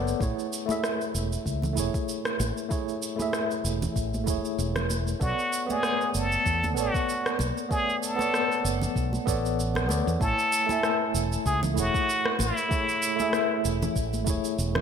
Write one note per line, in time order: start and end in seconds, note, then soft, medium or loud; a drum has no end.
0.00 0.13 F#1 medium
0.00 0.23 B3 loud
0.00 0.22 A4 medium
0.00 0.22 C#5 medium
0.00 0.22 D5 loud
0.08 shaker soft
0.19 0.32 A1 medium
0.19 0.65 A3 medium
0.19 0.65 E4 medium
0.19 0.66 G#4 medium
0.19 0.66 C#5 medium
0.19 kick loud
0.19 shaker soft
0.39 shaker soft
0.53 shaker medium
0.66 1.72 A3 loud
0.66 1.73 E4 medium
0.66 1.74 G#4 medium
0.66 high conga medium
0.70 1.75 E5 loud
0.70 shaker soft
0.84 cross-stick medium
0.84 shaker soft
1.01 shaker soft
1.15 1.36 E1 medium
1.15 shaker medium
1.33 shaker soft
1.46 1.79 C#2 medium
1.46 kick medium
1.46 shaker soft
1.62 high conga medium
1.62 low conga medium
1.62 shaker soft
1.73 2.66 A3 medium
1.73 2.67 E4 medium
1.73 2.68 G#4 medium
1.73 shaker medium
1.78 1.88 E1 medium
1.78 2.69 C#5 medium
1.94 kick loud
1.94 shaker soft
2.09 shaker soft
2.25 cross-stick medium
2.25 shaker soft
2.40 2.51 A1 loud
2.40 high conga medium
2.40 shaker medium
2.57 shaker soft
2.69 3.14 A3 medium
2.69 3.15 E4 medium
2.69 3.15 G#4 medium
2.69 3.16 C#5 loud
2.69 kick loud
2.69 shaker soft
2.89 shaker soft
3.02 shaker medium
3.16 4.22 A3 medium
3.16 4.23 E4 medium
3.16 high conga medium
3.16 shaker soft
3.20 4.24 G#4 medium
3.20 4.25 E5 loud
3.33 cross-stick medium
3.33 shaker soft
3.51 shaker soft
3.64 3.86 E1 medium
3.64 shaker medium
3.82 low conga medium
3.82 shaker soft
3.96 4.27 A1 medium
3.96 kick medium
3.96 shaker soft
4.14 high conga medium
4.14 shaker soft
4.24 4.38 E1 medium
4.24 5.16 A3 medium
4.24 5.17 E4 medium
4.24 kick loud
4.24 shaker medium
4.28 5.18 G#4 medium
4.28 5.19 C#5 medium
4.45 shaker soft
4.59 5.13 E1 medium
4.59 shaker soft
4.76 cross-stick medium
4.76 low conga medium
4.76 shaker soft
4.90 high conga medium
4.90 shaker medium
5.07 shaker soft
5.20 5.32 B1 loud
5.20 5.65 B3 medium
5.20 5.73 F#4 loud
5.20 5.65 A4 medium
5.20 5.65 C#5 medium
5.20 5.66 D5 loud
5.20 kick loud
5.20 shaker soft
5.39 shaker soft
5.53 shaker medium
5.67 6.73 A3 medium
5.67 6.72 B3 medium
5.67 high conga medium
5.67 shaker soft
5.71 6.18 G#4 loud
5.71 6.74 C#5 medium
5.71 6.75 D5 loud
5.83 cross-stick medium
5.83 shaker soft
6.01 shaker soft
6.15 6.36 F#1 medium
6.15 6.79 A4 loud
6.15 shaker medium
6.32 shaker soft
6.46 6.78 E2 medium
6.46 kick medium
6.46 shaker soft
6.64 high conga medium
6.64 low conga medium
6.64 shaker soft
6.74 6.88 A1 loud
6.74 7.66 B3 medium
6.74 7.40 F#4 medium
6.74 7.67 A4 medium
6.74 7.68 C#5 medium
6.74 shaker medium
6.80 7.69 D5 medium
6.94 kick loud
6.94 shaker soft
7.09 shaker soft
7.26 cross-stick medium
7.26 shaker soft
7.39 7.51 B1 loud
7.39 high conga medium
7.39 shaker medium
7.57 shaker soft
7.69 8.15 A3 medium
7.69 8.14 B3 medium
7.69 8.04 G#4 loud
7.69 8.15 C#5 medium
7.69 8.16 D5 loud
7.69 kick loud
7.69 shaker soft
7.89 shaker soft
8.03 8.65 A4 loud
8.03 shaker medium
8.16 9.22 B3 loud
8.16 9.23 A4 medium
8.16 9.24 C#5 medium
8.16 high conga medium
8.21 9.25 D5 loud
8.21 shaker soft
8.34 cross-stick medium
8.34 shaker soft
8.52 shaker soft
8.65 8.86 F#1 medium
8.65 shaker medium
8.81 low conga medium
8.81 shaker soft
8.96 9.17 B1 medium
8.96 kick medium
8.96 shaker soft
9.13 high conga medium
9.13 shaker soft
9.26 9.90 A1 loud
9.26 9.85 B3 loud
9.26 9.86 A4 medium
9.26 9.87 C#5 medium
9.26 9.87 D5 loud
9.26 kick medium
9.26 shaker medium
9.46 shaker soft
9.60 shaker soft
9.75 cross-stick medium
9.75 low conga medium
9.75 shaker soft
9.88 10.01 D2 medium
9.88 10.16 B3 medium
9.88 10.17 A4 medium
9.88 10.18 C#5 medium
9.88 10.18 D5 medium
9.88 high conga medium
9.88 shaker medium
10.07 10.16 E2 loud
10.07 shaker soft
10.20 10.32 A1 loud
10.20 10.65 A3 medium
10.20 10.65 E4 medium
10.20 11.11 A4 loud
10.20 10.66 C#5 medium
10.20 10.66 G#5 medium
10.20 kick loud
10.20 shaker soft
10.39 shaker soft
10.53 shaker medium
10.66 11.72 A3 medium
10.66 11.73 E4 medium
10.66 11.74 G#5 medium
10.66 high conga loud
10.66 shaker soft
10.72 11.75 E5 loud
10.83 cross-stick medium
10.83 shaker soft
11.14 11.36 E1 medium
11.14 shaker medium
11.32 shaker soft
11.46 11.79 C#2 medium
11.46 11.60 G#4 loud
11.46 kick medium
11.46 shaker soft
11.63 high conga medium
11.63 low conga medium
11.63 shaker soft
11.74 11.88 E1 medium
11.74 12.66 A3 medium
11.74 12.67 E4 medium
11.74 12.68 G#4 medium
11.74 shaker medium
11.79 12.43 F#4 loud
11.79 12.69 C#5 medium
11.94 kick loud
11.94 shaker soft
12.09 shaker soft
12.26 cross-stick medium
12.39 12.51 A1 loud
12.39 13.66 E4 medium
12.39 high conga medium
12.39 shaker medium
12.57 shaker soft
12.69 13.14 A3 medium
12.69 13.15 E4 medium
12.69 13.15 G#4 medium
12.69 13.16 C#5 loud
12.69 kick loud
12.69 shaker soft
12.89 shaker soft
13.02 shaker medium
13.16 14.22 A3 loud
13.16 14.23 E4 medium
13.16 14.24 G#4 medium
13.16 high conga medium
13.16 shaker soft
13.22 14.25 E5 loud
13.33 cross-stick medium
13.33 shaker soft
13.65 13.86 E1 medium
13.65 shaker medium
13.82 low conga loud
13.82 shaker soft
13.96 14.27 A1 medium
13.96 kick medium
13.96 shaker soft
14.14 high conga medium
14.14 shaker soft
14.24 14.38 E1 loud
14.24 14.81 A3 medium
14.24 14.81 E4 medium
14.24 14.81 G#4 medium
14.24 kick loud
14.24 shaker medium
14.30 14.81 C#5 loud
14.44 shaker soft
14.59 14.81 E1 medium
14.59 shaker soft
14.75 cross-stick medium
14.75 low conga medium